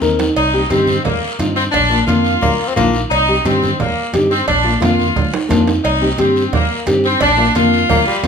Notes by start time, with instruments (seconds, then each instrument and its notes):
0.00 fingered electric bass D#2, nylon-string guitar C4 D#4 A#4, high conga, short guiro
0.19 low timbale, short guiro
0.36 fingered electric bass C2, saxophone section D#4, cowbell, long guiro
0.53 nylon-string guitar C4 D#4 G4
0.70 fingered electric bass G2, saxophone section C4, nylon-string guitar C4 D#4 G4, cowbell, high conga, short guiro
0.87 high conga, short guiro
1.04 fingered electric bass D#2, saxophone section A#3, cowbell, low conga, long guiro
1.39 fingered electric bass G2, nylon-string guitar C4 D#4 F4, cowbell, high conga, low timbale, short guiro
1.56 saxophone section C4, short guiro
1.72 fingered electric bass A#1, saxophone section D4, cowbell, low conga, long guiro
1.90 nylon-string guitar A#3 D4 F4
2.06 fingered electric bass F2, nylon-string guitar A#3 D4 F4, saxophone section F4, cowbell, high conga, short guiro
2.25 short guiro
2.41 fingered electric bass D2, tenor saxophone A#3, cowbell, low conga, long guiro
2.67 tenor saxophone C4
2.76 fingered electric bass A#1, tenor saxophone A#3, nylon-string guitar A#3 D4 F4, cowbell, high conga, low conga, low timbale, short guiro
2.93 short guiro
3.11 fingered electric bass C2, saxophone section D#4, cowbell, long guiro
3.28 nylon-string guitar C4 D#4 G4
3.45 fingered electric bass G2, nylon-string guitar C4 D#4 G4, saxophone section C4, cowbell, high conga, short guiro
3.62 high conga, short guiro
3.80 fingered electric bass D#2, saxophone section A#3, cowbell, low conga, long guiro
4.13 fingered electric bass G2, nylon-string guitar C4 D#4 G4, cowbell, high conga, low timbale, short guiro
4.31 saxophone section C4, short guiro
4.48 fingered electric bass A#1, saxophone section D4, cowbell, low conga, long guiro
4.64 nylon-string guitar A#3 D4 F4
4.80 fingered electric bass F2, nylon-string guitar A#3 D4 F4, saxophone section F4, cowbell, high conga, high timbale, short guiro
4.99 high conga, short guiro
5.16 fingered electric bass D2, cowbell, low conga, long guiro
5.34 low timbale
5.49 fingered electric bass F2, nylon-string guitar A#3 D4 F4, cowbell, high conga, low conga, low timbale, short guiro
5.67 low timbale, short guiro
5.84 fingered electric bass C2, saxophone section D#4, cowbell, long guiro
6.01 nylon-string guitar C4 D#4 G4
6.18 fingered electric bass G2, nylon-string guitar C4 D#4 G4, saxophone section C4, cowbell, high conga, short guiro
6.36 short guiro
6.53 fingered electric bass D#2, saxophone section A#3, cowbell, low conga, long guiro
6.86 fingered electric bass G2, nylon-string guitar C4 D#4 G4, cowbell, high conga, low timbale, short guiro
7.04 saxophone section C4, short guiro
7.21 fingered electric bass A#1, saxophone section D4, cowbell, low conga, long guiro
7.37 nylon-string guitar A#3 D4 F4
7.55 fingered electric bass F2, nylon-string guitar A#3 D4 F4, saxophone section F4, cowbell, high conga, short guiro
7.73 short guiro
7.89 fingered electric bass D2, tenor saxophone A#3, cowbell, low conga, long guiro
8.07 tenor saxophone G3
8.23 fingered electric bass F2, nylon-string guitar A#3, cowbell, high conga, low timbale, short guiro